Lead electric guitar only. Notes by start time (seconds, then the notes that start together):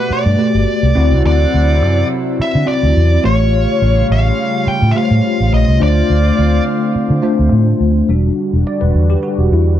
Already playing: B4
0.13 D5
1.27 D5
2.42 E5
2.68 D5
3.25 C#5
4.12 F5
4.68 G5
4.91 E5
4.97 F5
5.54 D#5
5.83 D5